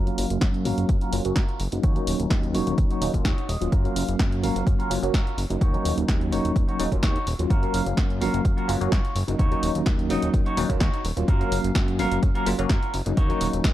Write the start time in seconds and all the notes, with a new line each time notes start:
Already playing: F4 F#4 A#4
0.06 F#3 A#3 C#4 F5, closed hi-hat
0.18 F#1, open hi-hat
0.30 F#1, closed hi-hat
0.41 F#2, kick, snare, closed hi-hat
0.54 muted clean electric guitar stroke, closed hi-hat
0.65 F#1 F#3 A#3 C#4 F4 F#4 A#4 F5, open hi-hat
0.78 F#1, closed hi-hat
0.89 F#2, kick, closed hi-hat
1.01 F4 F#4 A#4, closed hi-hat
1.12 F#1 F#3 A#3 C#4 F4, open hi-hat
1.25 F#1 F#3 A#3 C#4 F#4, muted clean electric guitar stroke, closed hi-hat
1.36 F#2 F4 F#4 A#4, kick, snare, closed hi-hat
1.49 closed hi-hat
1.60 F#1, open hi-hat
1.72 F#1 F#3 A#3 C#4 D#4, closed hi-hat
1.83 D#2 D#4 F#4 C#5, kick, closed hi-hat
1.95 F#3 A#3 C#4 D#4, closed hi-hat
2.07 D#1, open hi-hat
2.19 D#1, closed hi-hat
2.30 D#2, kick, snare, closed hi-hat
2.43 muted clean electric guitar stroke, closed hi-hat
2.54 D#1 F#3 A#3 C#4 D#4 F#4 C#5, open hi-hat
2.67 D#1, closed hi-hat
2.78 D#2, kick, closed hi-hat
2.90 D#4 F#4 C#5, closed hi-hat
3.01 D#1 F#3 A#3 C#4 D#4, open hi-hat
3.14 D#1 F#3 A#3 C#4 F4, kick, closed hi-hat
3.25 D#2 D#4 F#4 C#5 F#5, kick, snare, closed hi-hat
3.38 closed hi-hat
3.49 D#1 D#5, open hi-hat
3.61 D#1 F#3 A#3 C#4 F4, closed hi-hat
3.72 F#2 F4 F#4 A#4, kick, closed hi-hat
3.84 F#3 A#3 C#4 F5, closed hi-hat
3.96 F#1, open hi-hat
4.08 F#1, closed hi-hat
4.19 F#2, kick, snare, closed hi-hat
4.32 muted clean electric guitar stroke, closed hi-hat
4.43 F#1 F#3 A#3 C#4 F4 F#4 A#4 F5, open hi-hat
4.56 F#1, closed hi-hat
4.67 F#2, kick, closed hi-hat
4.79 F4 F#4 A#4, closed hi-hat
4.90 F#1 F#3 A#3 C#4 F4, open hi-hat, tambourine
5.02 F#1 F#3 A#3 C#4 F#4, muted clean electric guitar stroke, closed hi-hat, tambourine
5.14 F#2 F4 F#4 A#4, kick, snare, closed hi-hat
5.27 closed hi-hat
5.38 F#1, open hi-hat, tambourine
5.50 F#1 F#3 A#3 C#4 D#4, closed hi-hat
5.61 D#2 D#4 F#4 C#5, kick, closed hi-hat
5.73 F#3 A#3 C#4 D#4, closed hi-hat, tambourine
5.85 D#1, open hi-hat, tambourine
5.97 D#1, closed hi-hat, tambourine
6.08 D#2, kick, snare, closed hi-hat
6.21 muted clean electric guitar stroke, closed hi-hat
6.32 D#1 F#3 A#3 C#4 D#4 F#4 C#5, open hi-hat, tambourine
6.44 D#1, closed hi-hat, tambourine
6.56 D#2, kick, closed hi-hat
6.68 D#4 F#4 C#5, closed hi-hat, tambourine
6.79 D#1 F#3 A#3 C#4 D#4, open hi-hat, tambourine
6.92 D#1 F#3 A#3 C#4 F4, muted clean electric guitar stroke, kick, closed hi-hat
7.03 D#2 D#4 F#4 C#5, kick, snare, closed hi-hat
7.16 closed hi-hat
7.27 D#1, open hi-hat, tambourine
7.39 D#1 F#3 A#3 C#4 F4, closed hi-hat, tambourine
7.50 F#2 F4 F#4 A#4, kick, closed hi-hat
7.62 F#3 A#3 C#4 F5, closed hi-hat
7.74 F#1, open hi-hat, tambourine
7.86 F#1, closed hi-hat, tambourine
7.97 F#2, kick, snare, closed hi-hat
8.10 muted clean electric guitar stroke, closed hi-hat
8.21 F#1 F#3 A#3 C#4 F4 F#4 A#4 F5, open hi-hat
8.34 F#1, closed hi-hat
8.45 F#2, kick, closed hi-hat, tambourine
8.57 F4 F#4 A#4, closed hi-hat
8.68 F#1 F#3 A#3 C#4 F4, open hi-hat, tambourine
8.80 F#1 F#3 A#3 C#4 F#4, muted clean electric guitar stroke, closed hi-hat, tambourine
8.92 F#2 F4 F#4 C#5, kick, snare, closed hi-hat
9.05 closed hi-hat, tambourine
9.15 F#1, open hi-hat, tambourine
9.28 F#1 F#3 A#3 C#4 D#4, closed hi-hat, tambourine
9.39 D#2 D#4 F#4 C#5, kick, closed hi-hat
9.51 F#3 A#3 C#4 D#4, closed hi-hat, tambourine
9.63 D#1, open hi-hat, tambourine
9.75 D#1, closed hi-hat, tambourine
9.86 D#2, kick, snare, closed hi-hat
9.99 muted clean electric guitar stroke, closed hi-hat
10.09 D#1 F#3 A#3 C#4 D#4 F#4 D#5, open hi-hat, tambourine
10.22 D#1, closed hi-hat, tambourine
10.33 D#2, kick, closed hi-hat, tambourine
10.46 D#4 F#4 C#5, closed hi-hat
10.57 D#1 F#3 A#3 C#4 D#4, open hi-hat, tambourine
10.69 D#1 F#3 A#3 C#4 F4, muted clean electric guitar stroke, kick, closed hi-hat
10.80 D#2 D#4 F#4 C#5, kick, snare, closed hi-hat
10.93 closed hi-hat, tambourine
11.05 D#1, open hi-hat, tambourine
11.16 D#1 F#3 A#3 C#4 F4, closed hi-hat, tambourine
11.28 F#2 F4 F#4 A#4, kick, closed hi-hat, tambourine
11.40 F#3 A#3 C#4 F5, closed hi-hat, tambourine
11.52 F#1, open hi-hat, tambourine
11.64 F#1, closed hi-hat, tambourine
11.75 F#2, kick, snare, closed hi-hat
11.88 muted clean electric guitar stroke, closed hi-hat
11.99 F#1 F#3 A#3 C#4 F4 F#4 A#4 F5, open hi-hat, tambourine
12.11 F#1, closed hi-hat
12.22 F#2, kick, closed hi-hat, tambourine
12.35 F4 F#4 A#4, closed hi-hat
12.46 F#1 F#3 A#3 C#4 F4, open hi-hat, tambourine
12.59 F#1 F#3 A#3 C#4 F#4, closed hi-hat, tambourine
12.69 F#2 F4 F#4 A#4, kick, snare, closed hi-hat
12.83 closed hi-hat, tambourine
12.94 F#1, open hi-hat, tambourine
13.06 F#1 F#3 A#3 C#4 D#4, closed hi-hat, tambourine
13.17 D#2 D#4 F#4 C#5, kick, closed hi-hat, tambourine
13.29 F#3 A#3 C#4 D#4, closed hi-hat, tambourine
13.40 D#1, open hi-hat, tambourine
13.53 D#1, closed hi-hat, tambourine
13.64 D#2, kick, snare, closed hi-hat